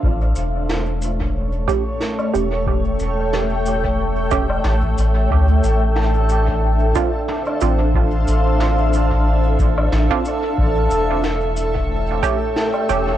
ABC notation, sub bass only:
X:1
M:4/4
L:1/8
Q:"Swing 16ths" 1/4=91
K:Aphr
V:1 name="Sub bass" clef=bass
A,,, E,,,4 z2 E,,,- | E,,, E,,,4 E,,, A,,, A,,, | D,, A,,,4 z2 A,,,- | A,,, A,,,4 A,,, A,,, z |
A,,, E,,,4 z2 E,,, |]